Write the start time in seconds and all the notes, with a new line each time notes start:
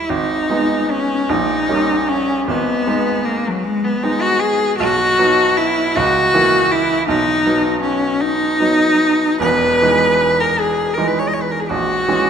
Already playing: G3 A#3 D#4 E4
0.09 G#1 D#4
0.50 G#3 B3 D#4
0.91 C#4
1.29 A#1 D#4
1.69 G3 A#3 C#4
2.09 C#4
2.48 G#1 B3
2.87 G#3 B3 D#4
3.25 A#3
3.48 F#3
3.63 G#3
3.85 B3
4.03 G#3 B3 D#4
4.22 F#4
4.40 G#4
4.79 B1 F#4
5.18 F#3 B3 D#4
5.57 E4
5.96 C#2 F#4
6.34 E3 A#3 E4
6.71 E4
7.08 B1 D#4
7.46 F#3 B3 D#4
7.82 C#4
8.22 D#4
8.60 F#3 B3 D#4
9.40 E1 E2 B4
9.82 E3 G#3 D#4
10.40 A#4
10.60 G#4
10.94 E3 G#3 A#4
10.98 D#4
11.08 B4
11.19 C#5
11.28 D#5
11.34 C#5
11.42 B4
11.51 A#4
11.60 G#4
11.70 A#1 F#4
12.08 E3 G#3 C#4